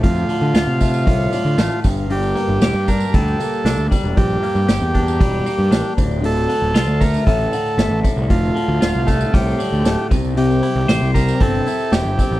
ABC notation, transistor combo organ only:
X:1
M:4/4
L:1/8
Q:1/4=116
K:Dm
V:1 name="Transistor combo organ"
F6- F z | G3 B A3 z | G6- G z | A3 B A3 z |
F3 A G3 z | G3 B A2 G2 |]